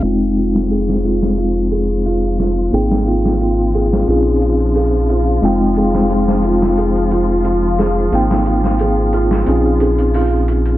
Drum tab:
HH |x-x-x-x-xxx-x-x-|x-x-x-x-x-xxo-xx|x-x-x-x-xxx-x-x-|x-x-x-x-x-xxo-xx|
SD |---o-o-o------o-|-o-o---o--------|---o-o-o------o-|-o-o---o--------|